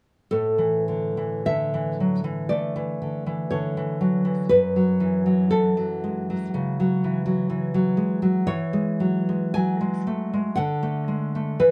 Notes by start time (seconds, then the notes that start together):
0.31 A2 A4
0.58 E3
0.88 D3
1.17 E3
1.46 D3 E5
1.74 E3
2.00 F#3
2.24 E3
2.49 A3 D5
2.76 E3
3.02 D3
3.26 E3
3.51 D3 C#5
3.77 E3
4.01 F#3
4.25 E3
4.49 F#2 B4
4.76 F#3
5.00 E3
5.26 F#3
5.51 E3 A4
5.77 F#3
6.04 G#3
6.30 F#3
6.54 C#3
6.80 F#3
7.04 E3
7.26 F#3
7.50 E3
7.74 F#3
7.97 G#3
8.22 F#3
8.47 E3 C#5
8.73 G#3
9.00 F#3
9.29 G#3
9.54 F#3 G#5
9.81 G#3
10.07 A3
10.34 G#3
10.56 D3 F#5
10.83 A3
11.08 G#3
11.35 A3
11.60 E3 B4